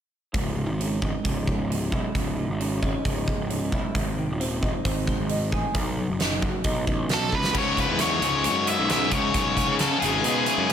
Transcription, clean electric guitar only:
0.34 C#2
0.56 G#2
0.79 C#3
1.02 G#3
1.24 C#3
1.47 G#2
1.71 G#3
1.92 E4
2.14 C#2
2.37 G#2
2.60 C#3
2.83 G#3
3.05 C#3
3.28 G#2
3.51 G#3
3.74 E4
3.95 G#2
4.18 D#3
4.40 C4
4.63 D#4
4.85 C4
5.08 G#3
5.30 D#4
5.52 G#4
5.75 B2
5.98 F#3
6.19 D#4
6.42 F#4
6.64 D#4
6.87 B3
7.10 F#4
7.32 B4
7.54 C#2
7.77 G#2
8.00 C#3
8.23 G#2
8.45 G#3
8.68 E4
8.90 C#3
9.12 G#3
9.35 C#2
9.57 G#2
9.79 C#3
10.01 G#2
10.25 G#3
10.46 E4
10.70 C#3

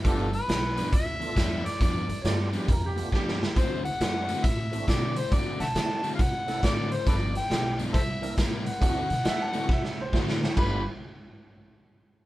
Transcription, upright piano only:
2.22 C#5
2.26 D5
2.57 G4
2.71 A#4
2.86 G4
3.11 F#4
3.15 G4
9.24 D#5
9.28 E5
9.42 A5
9.73 E5
10.01 C5
10.57 B4

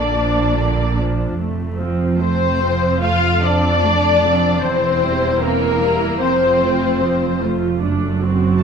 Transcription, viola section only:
Already playing: D3 A#3
0.16 F3 D4
0.57 D3 A#3
0.99 F3 D4
1.40 A3
1.81 F3 C4
2.20 A3
2.61 F3 C4
3.02 A3
3.42 F3 C4
3.83 A3
4.24 F3 C4
4.65 E3 C4
5.04 G3 E4
5.43 E3 C4
5.82 G3 E4
6.21 F3 C4
6.61 A3 F4
7.01 F3 C4
7.42 A3 F4
7.82 A3 D4
8.21 C4 F#4

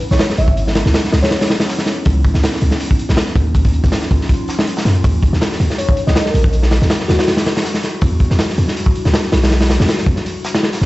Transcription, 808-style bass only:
0.11 B1
0.38 G#1
0.86 C#2
1.13 C#2
2.06 C#2
2.35 C#2
2.62 C#2
3.09 B1
3.36 D#2
3.84 D#2
4.11 D#2
4.85 F#2
5.04 D#2
5.33 D#2
5.60 D#2
6.07 C#2
6.34 A#1
6.82 D#2
7.09 D#2
8.02 E2
8.31 E2
8.58 E2
9.06 D2
9.33 B1
9.80 E2
10.07 E2
10.81 B1

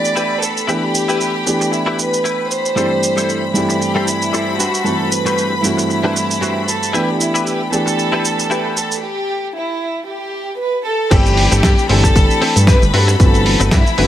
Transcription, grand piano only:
Already playing: E3 A3 B3 D4 G4
0.67 E3 A3 B3 D4 G4
1.45 E3 A3 B3 D4 G4
2.75 G2 E3 A3 C4 D4 G4
3.54 G2 E3 A3 C4 D4 G4
4.84 G2 E3 A3 C4 F#4
5.62 G2 E3 A3 C4 F#4
6.93 E3 A3 B3 D4 G4
7.71 E3 A3 B3 D4 G4
11.10 E3 A3 C4 D4 G4
11.88 E3 A3 C4 D4 G4
13.19 E3 A3 C4 F#4 B4
13.97 E3 A3 C4 F#4 B4

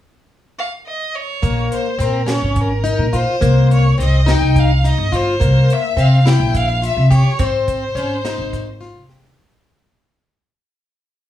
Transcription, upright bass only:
1.43 A#1
1.99 A#2
2.42 G#1
2.98 A#2
3.42 C2
3.99 C2
4.41 C2
4.98 G1
5.41 C2
5.96 C3
6.39 A#1
6.97 C3
7.40 G#1
7.95 G#1
8.38 G#1
8.95 F1

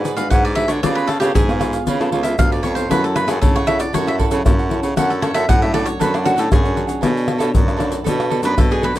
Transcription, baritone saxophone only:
Already playing: G#2
0.31 G#2
0.68 D3
0.83 C#3
1.20 C#3
1.34 G#2
1.87 C#3
2.12 C#2
2.38 D2
2.64 F2
2.90 F#2
3.28 F#2
3.41 C#3
3.93 F#2
4.30 C#3
4.45 F#2
4.81 C#3
4.96 F#2
5.33 F#2
5.48 A2
5.99 F#2
6.36 A2
6.51 F#2
7.02 B2
7.40 B2
7.54 F#2
8.05 B2
8.42 F#2
8.57 B2
8.95 F#2

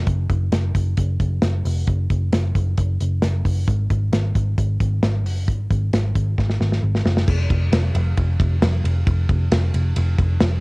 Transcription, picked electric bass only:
0.07 F#1
0.30 F#1
0.52 F#1
0.75 F#1
0.98 F#1
1.20 F#1
1.42 F#1
1.65 F1
1.88 F#1
2.10 F#1
2.32 F#1
2.55 F#1
2.78 F#1
3.01 F#1
3.23 F#1
3.45 F#1
3.68 G#1
3.91 G#1
4.12 G#1
4.35 G#1
4.58 G#1
4.80 G#1
5.03 G#1
5.26 F#1
5.48 G#1
5.71 G#1
5.93 G#1
6.15 G#1
6.38 G#1
6.60 G#1
6.83 G#1
7.05 F#1
7.28 F1
7.50 F1
7.72 F1
7.95 F1
8.18 F1
8.40 F1
8.62 F1
8.84 F1
9.07 F1
9.29 F1
9.52 F1
9.74 F1
9.97 F1
10.19 F1
10.41 F1

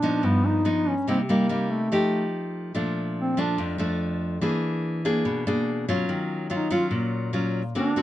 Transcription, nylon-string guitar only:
Already playing: A#2
0.02 F3 B3 D#4
0.23 G2
0.65 F3 B3 D#4
1.08 C3 G3 A#3 D#4
1.29 G3 A#3 D#4
1.49 G3 A#3 D#4
1.92 F3 A3 D#4 G4
2.75 A#2 F3 A3 D4
3.37 F3 A3 D4
3.58 F2
3.78 F3 A3 D4
4.41 E3 A#3 D4 G#4
5.05 A#3 D4 G#4
5.25 B2
5.47 A#3 D4 G#4
5.89 F#3 C#4 F4
6.09 D#3
6.50 F#3 C#4 F4
6.70 F#3 C#4 F4
6.91 A#2
7.33 F#3 C#4 F4
7.75 D3 A#3 C4 F#4
7.96 A#3 C4 F#4

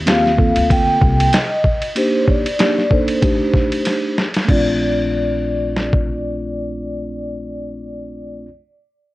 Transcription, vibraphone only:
0.08 F5
0.72 G5
1.34 D#5
1.98 C5
2.23 C#5
2.30 D5
2.61 D5
2.92 C5
4.50 D5

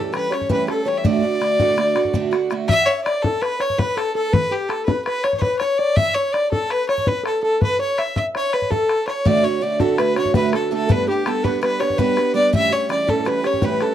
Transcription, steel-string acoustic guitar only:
Already playing: A2 E3 G3 C#4 G4
0.13 E3 G3 C#4 G4
0.31 G3 C#4 G4
0.49 A2 E3 G3 C#4 G4
0.67 G3 C#4 G4
0.85 E3 G3 C#4 G4
1.04 D2 A2 D3 A3 D4 F#4
1.22 D3 A3 D4 F#4
1.40 D3 A3 D4 F#4
1.59 D2 A2 D3 A3 D4 F#4
1.76 D3 A3 D4 F#4
1.95 D3 A3 D4 F#4
2.13 D2 A2 D3 A3 D4 F#4
2.31 D3 A3 D4 F#4
2.50 D3 A3 D4 F#4
9.25 D2 A2 D3 A3 D4 F#4
9.43 D3 A3 D4 F#4
9.61 D3 A3 D4 F#4
9.80 D2 A2 D3 A3 D4 F#4
9.98 D3 A3 D4 F#4
10.16 D3 A3 D4 F#4
10.35 D2 A2 D3 A3 D4 F#4
10.53 D3 A3 D4 F#4
10.71 D3 A3 D4 F#4
10.89 G3 B3 D4 G4
11.07 B3 D4 G4
11.26 G3 B3 D4 G4
11.44 G3 B3 D4 G4
11.61 G3 B3 D4 G4
11.80 B3 D4 G4
11.98 G3 B3 D4 G4
12.16 B3 D4 G4
12.34 G3 B3 D4 G4
12.53 A2 E3 G3 C#4 G4
12.71 C#4 G4
12.89 E3 G3 C#4 G4
13.07 A2 E3 G3 C#4 G4
13.25 E3 G3 C#4 G4
13.43 G3 C#4 G4
13.62 A2 E3 G3 C#4 G4
13.80 G3 C#4 G4

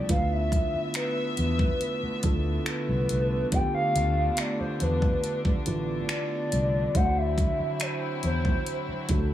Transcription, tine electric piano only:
Already playing: G3 D4 E4 F4 A4 D5
0.09 D3 D4 E4 F4 B4
2.23 D3 D4 E4 F4 A4
3.52 D3 B3 D4 F4 G4
5.66 D3 D4 E4 F4 B4
6.95 D3 D4 E4 F#4 C5
9.09 D3 D4 E4 F#4 A4

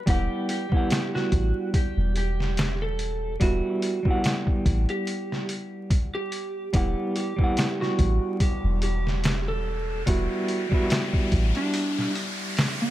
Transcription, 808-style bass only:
0.07 E1
1.32 A1
1.97 E1
3.41 E1
4.66 A1
6.74 E1
7.99 A1
8.64 E1
10.07 E1
11.32 A1

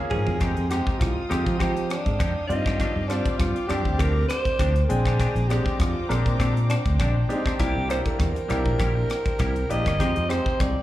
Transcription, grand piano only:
Already playing: A#3 C#4 F4 G#4
0.41 G#3 C4 D#4 G4
0.70 G#3 C4 D#4 G4
1.30 G#3 C4 D#4 G4
2.49 G3 C4 F4 D5
3.09 G3 C4 D4 F4
3.68 G3 C4 D4 G4
4.89 G#3 C4 D4 G5
5.50 G#3 C4 D4 G4
6.09 G#3 C4 D4 A#4
7.29 G#3 C4 D4 G4
7.59 A#3 D4 E4 G4
7.89 A#3 D4 E4 G4
8.49 A#3 D4 E4 G4
9.70 A#3 D4 E4 G4
9.99 G#3 C4 D#4 G4
10.29 G#3 C4 D#4 G4

